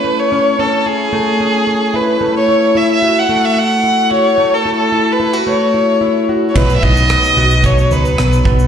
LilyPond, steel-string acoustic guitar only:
\new Staff \with { instrumentName = "Steel-string acoustic guitar" } { \time 4/4 \key fis \dorian \tempo 4 = 111 <a cis' e'>8 cis'8 cis'8 e'8 a8 cis'8 cis'8 e'8 | a8 e'8 e'8 fis'8 a8 e'8 e'8 fis'8 | a8 e'8 e'8 e'16 fis'16 a8 e'8 e'8 fis'8 | <b, b'>8 dis'8 b8 fis'8 b,8 b'8 b8 fis'8 | }